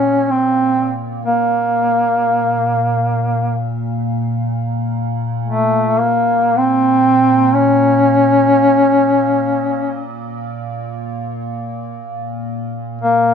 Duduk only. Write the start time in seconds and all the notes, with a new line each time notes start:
Already playing: C#4
0.31 C4
1.26 A#3
5.46 A3
5.98 A#3
6.57 C4
7.54 C#4
13.02 A#3